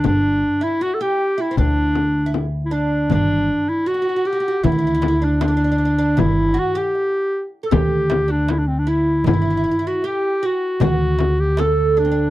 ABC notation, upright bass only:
X:1
M:4/4
L:1/8
Q:1/4=78
K:none
V:1 name="Upright bass" clef=bass
G,,, z3 D,,4 | G,,, z3 D,,4 | G,,, z3 D,,4 | G,,, z3 D,,4 |]